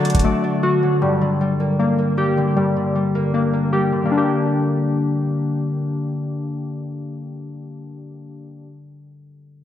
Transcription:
Already playing: synth keys D3 A3 F#4, harp D3 F#3 A3 D5, ambient pad F#4 D5 A5
0.05 harp D4, closed hi-hat
0.10 closed hi-hat
0.15 808-style bass D1, kick, closed hi-hat
0.19 closed hi-hat
0.24 synth keys A3, harp D5
0.44 harp D4
0.63 harp A3, synth keys F#4
0.83 harp F#3
1.02 harp G2, synth keys G3
1.21 harp D3
1.41 harp G3
1.60 harp A#3
1.79 synth keys A#3, harp D4
1.98 harp A#3
2.17 harp G3, synth keys G4
2.37 harp D3
2.56 harp G2, synth keys G3
2.76 harp D3
2.95 harp G3
3.15 harp A#3
3.34 synth keys A#3, harp D4
3.53 harp A#3
3.73 harp G3, synth keys G4
3.92 harp D3
4.05 harp D3 G3, synth keys A#3
4.11 harp A#3, synth keys D4
4.17 harp D4, synth keys G4

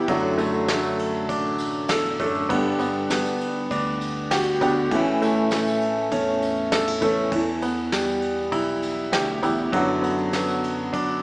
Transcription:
Already playing: upright piano B3 E4 G4
0.08 fingered electric bass F#2, steel-string acoustic guitar F#2 D3 A3 D4 F#4, upright piano F#3, kick, ride
0.38 upright piano A3, ride, tambourine
0.54 tambourine
0.68 steel-string acoustic guitar A3, snare, ride, tambourine
0.83 tambourine
0.99 ride, tambourine
1.14 tambourine
1.29 fingered electric bass A1, upright piano D4, kick, ride, tambourine
1.44 tambourine
1.58 ride, tambourine
1.73 tambourine
1.89 steel-string acoustic guitar E2, upright piano A4, snare, ride, tambourine
2.20 steel-string acoustic guitar F#2, upright piano A3 D4 A4, kick, ride
2.35 tambourine
2.49 fingered electric bass G2, steel-string acoustic guitar G2 D3 B3 D4, upright piano B3, kick, ride
2.54 steel-string acoustic guitar G4
2.79 upright piano B3, ride, tambourine
2.95 tambourine
3.10 steel-string acoustic guitar B3, snare, ride, tambourine
3.26 tambourine
3.41 ride, tambourine
3.55 tambourine
3.70 fingered electric bass D2, upright piano D4, kick, ride, tambourine
3.86 tambourine
4.01 ride, tambourine
4.17 tambourine
4.31 steel-string acoustic guitar F#4, upright piano G4, snare, ride, tambourine
4.61 steel-string acoustic guitar D3, upright piano B3 D4 G4, kick, ride, tambourine
4.77 tambourine
4.91 fingered electric bass A2, steel-string acoustic guitar A2 E3 A3 C#4, upright piano E3, kick, ride, tambourine
4.95 steel-string acoustic guitar E4
5.07 tambourine
5.22 upright piano A3, ride, tambourine
5.37 tambourine
5.51 steel-string acoustic guitar A3, snare, ride, tambourine
5.67 tambourine
5.81 ride, tambourine
5.97 tambourine
6.11 fingered electric bass E2, upright piano C#4, kick, ride, tambourine
6.28 tambourine
6.42 ride, tambourine
6.57 tambourine
6.72 steel-string acoustic guitar D4, upright piano A4, snare, ride, tambourine
6.87 steel-string acoustic guitar E4, tambourine
7.01 steel-string acoustic guitar E3, upright piano A3 C#4 A4, kick, ride, tambourine
7.18 tambourine
7.32 steel-string acoustic guitar E2, fingered electric bass E2, upright piano E3, kick, ride
7.62 upright piano B3, ride, tambourine
7.77 tambourine
7.92 steel-string acoustic guitar G3, snare, ride, tambourine
8.08 tambourine
8.22 ride, tambourine
8.38 tambourine
8.52 fingered electric bass B1, upright piano E4, kick, ride, tambourine
8.69 tambourine
8.82 ride, tambourine
8.99 tambourine
9.12 steel-string acoustic guitar D2, upright piano G4, snare, ride, tambourine
9.42 steel-string acoustic guitar E2, upright piano B3 E4 G4, kick, ride, tambourine
9.58 tambourine
9.72 fingered electric bass F#2, steel-string acoustic guitar F#2 D3 B3 D4, upright piano F#3, kick, ride
9.76 steel-string acoustic guitar F#4
10.02 upright piano B3, ride, tambourine
10.19 tambourine
10.33 steel-string acoustic guitar B3, snare, ride, tambourine
10.48 tambourine
10.64 ride, tambourine
10.78 tambourine
10.93 fingered electric bass F#2, upright piano D4, kick, ride, tambourine
11.09 tambourine

